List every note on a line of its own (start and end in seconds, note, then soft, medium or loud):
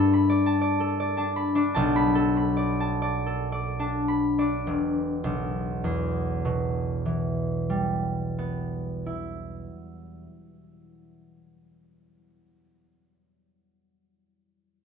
0.00 1.81 G2 medium
0.00 1.48 B3 soft
0.00 1.17 D4 medium
0.00 0.79 A4 medium
0.00 1.49 B4 medium
0.00 0.28 D5 medium
0.00 0.45 A5 medium
0.00 0.12 B5 medium
0.13 1.35 B5 medium
0.30 0.60 D5 medium
0.46 1.16 A5 medium
0.61 0.99 D5 medium
0.80 2.14 A4 medium
1.00 1.54 D5 medium
1.17 1.54 D4 soft
1.17 1.73 A5 medium
1.36 1.95 B5 medium
1.55 3.78 D4 medium
1.55 2.56 D5 medium
1.74 4.72 B1 medium
1.74 2.79 A5 medium
1.96 2.36 B5 medium
2.15 3.25 A4 medium
2.37 4.07 B5 medium
2.57 3.01 D5 medium
2.80 3.79 A5 medium
3.02 3.51 D5 medium
3.26 4.72 A4 medium
3.52 4.38 D5 soft
3.79 4.37 D4 soft
3.79 4.72 A5 soft
4.08 7.98 B5 medium
4.38 4.72 D4 soft
4.38 4.73 D5 soft
4.67 9.07 E1 soft
5.24 9.64 B1 soft
5.84 10.24 E2 soft
6.45 10.85 B2 soft
7.06 11.46 E3 soft
7.70 12.10 G3 soft
8.39 12.72 B3 soft
9.06 12.72 E4 soft